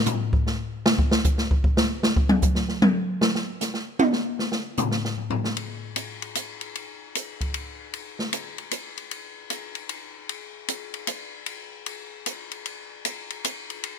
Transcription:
0.06 floor tom loud
0.06 hi-hat pedal medium
0.33 kick medium
0.47 snare soft
0.86 snare loud
0.99 kick medium
1.11 snare loud
1.24 kick medium
1.24 hi-hat pedal medium
1.38 snare medium
1.51 kick medium
1.64 kick medium
1.77 snare loud
2.03 snare loud
2.16 kick medium
2.29 mid tom loud
2.42 kick medium
2.42 hi-hat pedal medium
2.55 snare soft
2.69 snare soft
2.82 mid tom loud
3.21 snare loud
3.35 snare medium
3.61 snare soft
3.61 hi-hat pedal medium
3.74 snare soft
3.99 high tom loud
4.13 snare soft
4.39 snare soft
4.52 snare medium
4.77 floor tom loud
4.77 hi-hat pedal medium
4.91 snare medium
5.05 snare soft
5.17 floor tom soft
5.30 floor tom loud
5.44 snare medium
5.57 ride medium
5.96 hi-hat pedal medium
5.96 ride medium
6.22 ride soft
6.35 hi-hat pedal medium
6.35 ride medium
6.61 ride soft
6.75 ride medium
7.15 hi-hat pedal medium
7.15 ride medium
7.41 kick soft
7.41 ride soft
7.54 ride medium
7.94 ride medium
8.19 snare soft
8.33 hi-hat pedal medium
8.33 ride medium
8.58 ride soft
8.71 hi-hat pedal medium
8.71 ride medium
8.98 ride soft
9.11 ride medium
9.50 hi-hat pedal medium
9.50 ride medium
9.75 ride soft
9.89 ride medium
10.29 ride medium
10.68 hi-hat pedal medium
10.68 ride medium
10.94 ride soft
11.07 hi-hat pedal medium
11.07 ride medium
11.46 ride medium
11.86 ride medium
12.26 hi-hat pedal medium
12.26 ride medium
12.52 ride soft
12.66 ride medium
13.05 hi-hat pedal medium
13.05 ride medium
13.30 ride soft
13.45 hi-hat pedal medium
13.45 ride medium
13.70 ride soft
13.84 ride medium

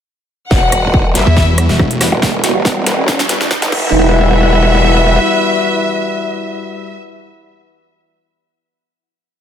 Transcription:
0.51 1.14 E1 medium
0.51 3.69 G3 medium
0.51 3.69 E4 medium
0.51 1.07 F#4 medium
0.51 3.69 F#4 medium
0.51 1.07 F#5 loud
0.51 kick medium
0.51 snare soft
0.51 riser medium
0.72 cross-stick medium
0.72 closed hi-hat medium
0.94 kick medium
1.15 1.25 G1 loud
1.15 1.21 G3 medium
1.15 1.71 E4 medium
1.15 1.21 E4 medium
1.15 1.21 F#4 medium
1.15 1.21 B4 medium
1.15 1.71 E5 loud
1.15 snare medium
1.15 closed hi-hat medium
1.26 1.68 E2 medium
1.37 kick medium
1.37 snare medium
1.58 cross-stick medium
1.58 closed hi-hat medium
1.69 2.10 E1 loud
1.69 snare medium
1.79 kick loud
1.79 cross-stick soft
1.91 closed hi-hat soft
2.01 2.07 G3 medium
2.01 2.07 E4 medium
2.01 2.07 F#4 medium
2.01 2.07 B4 medium
2.01 cross-stick medium
2.01 snare medium
2.01 open hi-hat medium
2.12 2.53 E1 loud
2.22 kick medium
2.22 snare medium
2.44 snare medium
2.44 closed hi-hat medium
2.55 2.99 E1 loud
2.65 kick loud
2.65 snare medium
2.86 2.93 G3 medium
2.86 2.93 E4 medium
2.86 2.93 F#4 medium
2.86 2.93 B4 medium
2.86 snare medium
2.86 closed hi-hat medium
2.99 3.18 D#1 loud
3.08 kick loud
3.08 snare medium
3.19 3.60 E1 loud
3.19 snare medium
3.29 3.36 G3 medium
3.29 3.36 E4 medium
3.29 3.36 F#4 medium
3.29 3.36 B4 medium
3.29 snare loud
3.29 closed hi-hat medium
3.41 snare medium
3.51 kick loud
3.51 snare loud
3.62 3.72 G1 loud
3.62 snare medium
3.62 closed hi-hat soft
3.72 5.18 E1 loud
3.72 6.96 G3 loud
3.72 6.95 E4 medium
3.72 6.96 E4 medium
3.72 6.95 F#4 medium
3.72 6.96 B4 loud
3.72 6.96 B4 medium
3.72 6.96 E5 loud
3.72 6.96 F#5 medium
3.72 kick loud
3.72 crash medium

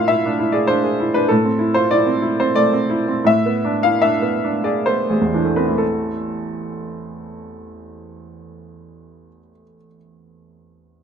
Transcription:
0.00 1.26 A2 soft
0.00 0.25 D4 soft
0.00 0.09 E4 soft
0.00 1.32 F4 soft
0.00 0.08 E5 medium
0.00 1.32 F5 medium
0.08 0.32 E4 soft
0.08 0.52 E5 medium
0.25 0.48 D4 soft
0.40 0.63 E4 soft
0.52 0.78 G#4 soft
0.52 0.68 D5 medium
0.67 0.93 D4 soft
0.67 1.14 C5 medium
0.84 1.08 G#4 soft
1.00 1.24 E4 soft
1.14 1.30 D4 soft
1.14 1.30 B4 medium
1.28 3.23 A2 soft
1.28 1.75 A4 medium
1.45 1.69 C4 soft
1.59 1.84 E4 soft
1.74 1.91 F4 soft
1.74 1.90 C5 medium
1.91 2.17 E4 soft
1.91 2.39 D5 medium
2.06 2.32 C4 soft
2.22 2.49 E4 soft
2.40 2.67 C4 soft
2.40 2.56 C5 medium
2.55 2.84 A3 soft
2.55 3.26 D5 medium
2.73 3.01 C4 soft
2.90 3.19 E4 soft
3.08 3.26 C4 soft
3.24 5.75 A2 medium
3.24 3.82 E5 medium
3.46 3.75 B3 soft
3.65 3.94 D4 soft
3.83 4.03 E4 soft
3.83 4.02 F5 medium
4.02 4.35 D4 soft
4.02 4.65 E5 medium
4.22 4.56 B3 soft
4.44 4.79 D4 soft
4.64 5.00 G#4 soft
4.64 4.87 D5 medium
4.86 5.25 B3 soft
4.86 5.58 C5 medium
5.10 9.29 A1 soft
5.10 5.49 G#4 soft
5.21 9.40 E2 soft
5.33 9.52 E3 soft
5.33 5.71 D4 soft
5.45 9.63 A3 soft
5.56 5.79 B3 soft
5.56 9.75 C4 soft
5.56 5.79 B4 soft
5.67 9.86 E4 soft
5.78 9.97 A4 soft

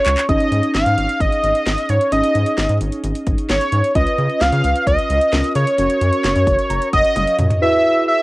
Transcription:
0.00 0.25 C#4 medium
0.00 0.25 F4 medium
0.00 0.25 G#4 medium
0.00 0.26 C#5 medium
0.06 0.15 C#2 loud
0.06 clap loud
0.06 closed hi-hat medium
0.17 clap loud
0.17 closed hi-hat medium
0.29 0.38 G#1 loud
0.29 2.08 C#4 medium
0.29 2.08 D#4 medium
0.29 2.09 G#4 medium
0.29 0.71 D#5 loud
0.29 kick loud
0.29 closed hi-hat medium
0.40 closed hi-hat medium
0.52 0.61 G#2 loud
0.52 closed hi-hat medium
0.63 closed hi-hat soft
0.75 0.84 G#1 medium
0.75 1.22 F5 loud
0.75 snare loud
0.75 closed hi-hat medium
0.86 0.96 G#2 loud
0.86 closed hi-hat soft
0.98 1.07 G#1 loud
0.98 closed hi-hat medium
1.09 closed hi-hat medium
1.20 1.30 G#1 loud
1.20 1.91 D#5 loud
1.20 kick medium
1.20 closed hi-hat medium
1.32 closed hi-hat soft
1.44 1.53 G#1 loud
1.44 closed hi-hat medium
1.55 closed hi-hat medium
1.66 1.76 G#1 loud
1.66 snare loud
1.66 closed hi-hat medium
1.78 closed hi-hat soft
1.89 1.99 G#2 medium
1.89 2.12 C#5 medium
1.89 closed hi-hat medium
2.01 closed hi-hat medium
2.12 2.22 G#1 loud
2.12 3.92 C#4 medium
2.12 3.92 D#4 medium
2.12 3.92 G#4 medium
2.12 2.77 D#5 medium
2.12 closed hi-hat medium
2.24 closed hi-hat medium
2.35 2.44 G#2 medium
2.35 closed hi-hat medium
2.46 closed hi-hat medium
2.58 2.67 G#1 loud
2.58 snare loud
2.58 closed hi-hat medium
2.69 2.79 G#2 loud
2.69 closed hi-hat soft
2.81 2.90 G#1 loud
2.81 closed hi-hat medium
2.92 closed hi-hat soft
3.04 3.13 G#1 loud
3.04 closed hi-hat medium
3.15 closed hi-hat soft
3.27 3.36 G#1 medium
3.27 kick medium
3.27 closed hi-hat medium
3.38 closed hi-hat medium
3.50 3.59 G#1 loud
3.50 3.92 C#5 medium
3.50 snare loud
3.50 closed hi-hat medium
3.61 closed hi-hat soft
3.72 3.82 G#2 loud
3.72 closed hi-hat medium
3.84 closed hi-hat soft
3.95 4.05 C#2 loud
3.95 5.30 C#4 medium
3.95 5.30 F4 medium
3.95 5.30 B4 medium
3.95 4.43 D#5 loud
3.95 kick loud
3.95 closed hi-hat medium
4.07 closed hi-hat medium
4.18 4.28 C#3 loud
4.18 closed hi-hat medium
4.30 closed hi-hat medium
4.41 4.51 C#2 loud
4.41 4.87 F5 loud
4.41 snare loud
4.41 closed hi-hat medium
4.52 4.62 C#3 loud
4.52 closed hi-hat soft
4.64 4.73 C#2 loud
4.64 closed hi-hat medium
4.76 closed hi-hat medium
4.87 4.96 C#2 loud
4.87 5.52 D#5 loud
4.87 kick medium
4.87 closed hi-hat medium
4.99 closed hi-hat soft
5.10 5.19 C#2 loud
5.10 closed hi-hat medium
5.21 closed hi-hat medium
5.33 5.42 C#2 loud
5.33 5.77 C#4 medium
5.33 5.79 F4 soft
5.33 5.77 A#4 medium
5.33 snare loud
5.33 closed hi-hat medium
5.44 closed hi-hat soft
5.55 5.65 C#3 loud
5.55 6.89 C#5 loud
5.55 closed hi-hat medium
5.67 closed hi-hat medium
5.78 5.88 F#1 loud
5.78 7.58 C#4 medium
5.78 7.58 F#4 medium
5.78 7.58 A#4 medium
5.78 closed hi-hat medium
5.90 closed hi-hat medium
6.01 6.11 F#2 loud
6.01 closed hi-hat medium
6.13 closed hi-hat soft
6.24 6.34 F#1 loud
6.24 snare loud
6.24 closed hi-hat medium
6.36 6.45 F#2 loud
6.36 closed hi-hat soft
6.47 6.56 F#1 loud
6.47 6.69 C#6 medium
6.47 kick medium
6.47 closed hi-hat medium
6.59 closed hi-hat soft
6.70 6.79 F#1 loud
6.70 6.91 A#5 medium
6.70 closed hi-hat medium
6.82 closed hi-hat soft
6.93 7.03 F#1 loud
6.93 7.36 D#5 loud
6.93 7.14 F#5 medium
6.93 kick medium
6.93 closed hi-hat medium
7.05 closed hi-hat medium
7.16 7.25 F#1 loud
7.16 7.37 F5 medium
7.16 closed hi-hat medium
7.16 high tom medium
7.27 closed hi-hat soft
7.39 7.48 F#2 loud
7.39 7.60 D#5 medium
7.39 closed hi-hat medium
7.39 mid tom medium
7.50 closed hi-hat medium
7.50 floor tom medium
7.62 8.22 E4 medium
7.62 8.22 F#4 medium
7.62 8.22 G#4 medium
7.62 8.22 B4 medium
7.62 8.04 E5 loud
8.08 8.22 E5 loud

